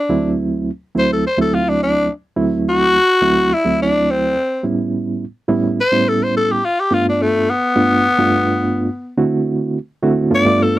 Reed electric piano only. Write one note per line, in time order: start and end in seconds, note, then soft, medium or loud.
0.09 0.70 D2 medium
0.09 0.70 F#3 medium
0.09 0.70 A3 medium
0.09 0.70 C4 medium
0.09 0.70 E4 medium
0.95 1.25 D2 medium
0.95 1.25 F#3 medium
0.95 1.25 A3 medium
0.95 1.25 C4 medium
0.95 1.25 E4 medium
1.38 2.07 D2 medium
1.38 2.07 F#3 medium
1.38 2.08 A3 medium
1.38 2.08 C4 medium
1.38 2.08 E4 medium
2.36 2.97 D2 medium
2.36 2.97 F#3 medium
2.36 2.97 A3 medium
2.36 2.97 C4 medium
2.36 2.97 E4 medium
3.22 3.52 D2 medium
3.22 3.52 F#3 medium
3.22 3.52 A3 medium
3.22 3.52 C4 medium
3.22 3.52 E4 medium
3.65 4.34 D2 medium
3.65 4.34 F#3 medium
3.65 4.34 A3 medium
3.65 4.34 C4 medium
3.65 4.34 E4 medium
4.63 5.24 A2 medium
4.63 5.24 G3 medium
4.63 5.24 B3 medium
4.63 5.24 C#4 medium
4.63 5.24 E4 medium
5.48 5.78 A2 medium
5.48 5.78 G3 medium
5.48 5.79 B3 medium
5.48 5.79 C#4 medium
5.48 5.79 E4 loud
5.92 6.61 A2 medium
5.92 6.61 G3 medium
5.92 6.61 B3 medium
5.92 6.61 C#4 medium
5.92 6.61 E4 medium
6.91 7.51 G2 medium
6.91 7.51 A3 medium
6.91 7.51 B3 medium
6.91 7.51 D4 medium
6.91 7.51 F4 medium
7.75 8.06 G2 medium
7.75 8.06 A3 medium
7.75 8.06 B3 medium
7.75 8.06 D4 medium
7.75 8.06 F4 medium
8.19 8.88 G2 medium
8.19 8.88 A3 medium
8.19 8.88 B3 medium
8.19 8.88 D4 medium
8.19 8.88 F4 loud
9.17 9.78 D3 medium
9.17 9.78 A3 medium
9.17 9.78 C4 medium
9.17 9.78 E4 medium
9.17 9.78 F#4 medium
10.03 10.31 D3 medium
10.03 10.30 A3 medium
10.03 10.31 C4 medium
10.03 10.31 E4 medium
10.03 10.31 F#4 loud
10.31 10.43 G2 medium
10.31 10.43 A3 medium
10.31 10.43 B3 medium
10.31 10.43 D4 medium
10.31 10.43 F4 medium
10.45 10.79 G2 medium
10.45 10.79 A3 medium
10.45 10.79 B3 medium
10.45 10.79 D4 medium
10.45 10.79 F4 medium